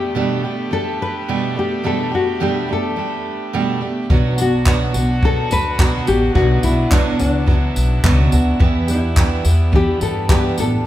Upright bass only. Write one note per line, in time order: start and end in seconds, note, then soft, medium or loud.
4.10 4.91 B1 loud
4.95 5.41 B1 loud
5.52 5.98 D2 loud
6.08 6.31 A1 medium
6.35 6.58 B1 loud
6.63 6.86 B1 loud
6.92 7.15 B1 loud
7.20 7.66 C#2 medium
7.77 8.00 B1 loud
8.04 8.27 C#2 loud
8.33 8.56 D2 medium
8.61 9.41 E2 loud
9.45 9.91 E2 loud
10.02 10.48 G2 loud
10.58 10.81 A1 loud